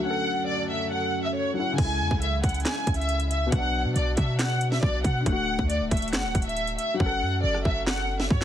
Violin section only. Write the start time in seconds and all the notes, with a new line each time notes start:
0.04 F#5
0.48 D5
0.70 E5
0.92 F#5
1.24 E5
1.35 C#5
1.57 F#5
1.78 G#5
2.22 E5
2.43 F#5
2.65 G#5
2.98 E5
3.30 E5
3.52 F#5
3.96 D5
4.17 E5
4.39 F#5
4.72 E5
4.83 D5
5.04 F#5
5.26 F#5
5.70 D5
5.91 E5
6.13 F#5
6.46 E5
6.79 E5
7.00 F#5
7.43 D5
7.65 E5
7.87 F#5
8.19 E5
8.31 C#5